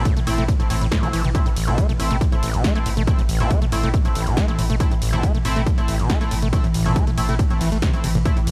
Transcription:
Already playing: synth drone A2 E3
0.05 acid bass A2, kick, closed hi-hat
0.17 sub bass A1, acid bass A3, closed hi-hat, mid tom
0.27 sub bass A1, acid bass A2, analog polysynth A3 C4 E4, open hi-hat, ride
0.38 sub bass A1, acid bass A3, closed hi-hat, mid tom
0.48 acid bass A2, kick, closed hi-hat
0.60 sub bass A1, acid bass A2, analog polysynth A3 C4 E4, closed hi-hat
0.70 sub bass A1, acid bass A2, analog polysynth A3 C4 E4, open hi-hat, ride
0.81 sub bass A1, acid bass A2, closed hi-hat
0.92 acid bass A2, kick, snare, closed hi-hat
1.03 sub bass A1, acid bass G3, analog polysynth A3 C4 E4, closed hi-hat, mid tom
1.13 sub bass A1, acid bass E3, analog polysynth A3 C4 E4, open hi-hat, ride
1.24 sub bass A1, acid bass E3, closed hi-hat, mid tom
1.35 acid bass A2, synth drone A2 E3, analog polysynth A3 C4 E4, kick, closed hi-hat
1.46 sub bass A1, acid bass A2, closed hi-hat
1.56 acid bass A1, sub bass A1, open hi-hat, ride
1.67 sub bass A1, acid bass C3, analog polysynth A3 C4 E4, closed hi-hat, mid tom
1.78 acid bass A3, kick, closed hi-hat
1.89 sub bass A1, acid bass A3, closed hi-hat, mid tom
1.99 sub bass A1, acid bass A2, analog polysynth A3 C4 E4, open hi-hat, ride
2.11 sub bass A1, acid bass A3, closed hi-hat, mid tom
2.21 acid bass A2, kick, closed hi-hat
2.32 sub bass A1, acid bass A2, analog polysynth A3 C4 E4, closed hi-hat
2.43 acid bass A1, sub bass A1, open hi-hat, ride
2.54 sub bass A1, acid bass C3, closed hi-hat
2.64 acid bass A3, kick, snare, closed hi-hat
2.75 sub bass A1, acid bass A3, analog polysynth A3 C4 E4, closed hi-hat
2.86 sub bass A1, acid bass A2, open hi-hat, ride
2.97 sub bass A1, acid bass A3, closed hi-hat, mid tom
3.07 acid bass A2, analog polysynth A3 C4 E4, kick, closed hi-hat
3.19 sub bass A1, acid bass A2, closed hi-hat
3.29 sub bass A1, acid bass A1, open hi-hat, ride
3.40 sub bass A1, acid bass C3, analog polysynth A3 C4 E4, closed hi-hat, mid tom
3.51 acid bass A3, kick, closed hi-hat
3.62 sub bass A1, acid bass A3, closed hi-hat, mid tom
3.72 sub bass A1, acid bass A2, analog polysynth A3 C4 E4, open hi-hat, ride
3.83 sub bass A1, acid bass A3, closed hi-hat, mid tom
3.94 acid bass A2, kick, closed hi-hat
4.05 sub bass A1, acid bass A2, analog polysynth A3 C4 E4, closed hi-hat
4.15 sub bass A1, acid bass A1, open hi-hat, ride
4.27 sub bass A1, acid bass C3, closed hi-hat
4.37 acid bass A3, kick, snare, closed hi-hat
4.48 sub bass A1, acid bass A3, analog polysynth A3 C4 E4, closed hi-hat
4.59 sub bass A1, acid bass A2, open hi-hat, ride
4.70 sub bass A1, acid bass A3, closed hi-hat, mid tom
4.80 acid bass A2, analog polysynth A3 C4 E4, kick, closed hi-hat
4.91 sub bass A1, acid bass A2, closed hi-hat
5.02 sub bass A1, acid bass A1, open hi-hat, ride
5.13 sub bass A1, acid bass C3, analog polysynth A3 C4 E4, closed hi-hat, mid tom
5.23 acid bass A3, kick, closed hi-hat
5.35 sub bass A1, acid bass A3, closed hi-hat, mid tom
5.45 sub bass A1, acid bass A2, analog polysynth A3 C4 E4, open hi-hat, ride
5.56 sub bass A1, acid bass A3, closed hi-hat, mid tom
5.66 acid bass A2, kick, closed hi-hat
5.78 sub bass A1, acid bass A2, analog polysynth A3 C4 E4, closed hi-hat
5.88 acid bass A1, sub bass A1, open hi-hat, ride
5.99 sub bass A1, acid bass C3, closed hi-hat
6.10 acid bass A3, kick, snare, closed hi-hat
6.21 sub bass A1, analog polysynth A3 C4 E4, acid bass A3, closed hi-hat
6.31 sub bass A1, acid bass A2, open hi-hat, ride
6.42 sub bass A1, acid bass A3, closed hi-hat, mid tom
6.53 acid bass A2, analog polysynth A3 C4 E4, kick, closed hi-hat
6.64 sub bass A1, acid bass A2, closed hi-hat
6.74 sub bass A1, acid bass A1, open hi-hat, ride
6.86 sub bass A1, acid bass C3, analog polysynth A3 C4 E4, closed hi-hat, mid tom
6.96 acid bass A3, kick, closed hi-hat
7.07 sub bass A1, acid bass A3, closed hi-hat, mid tom
7.18 sub bass A1, acid bass A2, analog polysynth A3 C4 E4, open hi-hat, ride
7.29 sub bass A1, acid bass A3, closed hi-hat, mid tom
7.39 acid bass A2, kick, closed hi-hat
7.50 sub bass A1, acid bass A2, analog polysynth A3 C4 E4, closed hi-hat
7.61 sub bass A1, acid bass E3, open hi-hat, ride
7.72 sub bass A1, acid bass A3, closed hi-hat
7.82 acid bass C3, kick, snare, closed hi-hat
7.93 sub bass A1, analog polysynth A3 C4 E4, closed hi-hat
8.04 sub bass A1, acid bass C3, open hi-hat, ride
8.15 sub bass A1, acid bass A2, closed hi-hat, mid tom
8.25 acid bass A2, analog polysynth A3 C4 E4, kick, closed hi-hat
8.37 sub bass A1, acid bass A2, closed hi-hat
8.47 sub bass A1, acid bass A1, open hi-hat, ride

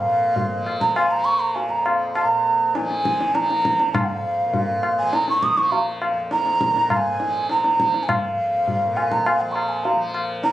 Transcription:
Already playing: tanpura F2 A#2 F3, bansuri F5
0.02 tanpura A#2
0.36 tabla tin, tabla ge
0.57 tanpura F3
0.66 tabla na
0.81 bansuri A#5, tabla ke
0.96 bansuri G#5, tabla na
1.10 tanpura F3, bansuri A#5
1.25 bansuri C#6
1.40 bansuri A#5
1.55 bansuri G#5, tabla tin
1.68 tanpura F2, bansuri A#5
1.86 tabla na
2.15 bansuri A#5, tabla na
2.24 tanpura A#2
2.75 bansuri G#5, tabla te
2.80 tanpura F3
2.91 tabla te
3.05 tabla ke
3.20 tabla te
3.35 tanpura F3, bansuri A#5, tabla te
3.50 tabla te
3.65 tabla ke
3.80 tabla te
3.91 tanpura F2, bansuri F5, tabla na, tabla ge
4.46 tanpura A#2
4.54 tabla tin, tabla ge
4.83 tabla na
4.99 tanpura F3, bansuri G#5
5.13 bansuri A#5, tabla te
5.28 bansuri C#6, tabla te
5.42 bansuri D#6, tabla ke
5.57 tanpura F3, bansuri C#6, tabla te
5.72 bansuri A#5, tabla tin
6.02 tabla na
6.13 tanpura F2
6.31 bansuri A#5, tabla te
6.46 tabla te
6.61 tabla ke
6.67 tanpura A#2
6.76 tabla te
6.90 bansuri A#5, tabla na, tabla ge
6.97 bansuri G#5
7.20 tanpura F3, tabla te
7.49 bansuri A#5, tabla te
7.64 tabla te
7.76 tanpura F3, tabla ke
7.94 tabla te
8.03 bansuri G#5
8.09 bansuri F5, tabla na, tabla ge
8.31 tanpura F2
8.68 tabla tin, tabla ge
8.85 tanpura A#2
8.97 bansuri G#5, tabla na
9.11 bansuri A#5, tabla ke
9.26 bansuri G#5, tabla na
9.41 tanpura F3, bansuri F5
9.52 bansuri A#5 C#6, tabla na
9.69 bansuri G#5
9.84 bansuri A#5, tabla tin
9.96 tanpura F3
10.14 tabla na
10.44 bansuri A#5, tabla te

